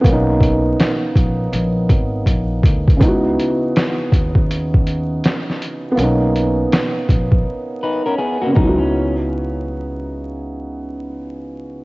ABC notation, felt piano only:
X:1
M:4/4
L:1/8
Q:"Swing 16ths" 1/4=81
K:C#dor
V:1 name="Felt piano"
[A,B,CD]8 | [C,B,DEF]8 | [A,B,CD]6- [A,B,CD] [C,B,DEF]- | [C,B,DEF]8 |]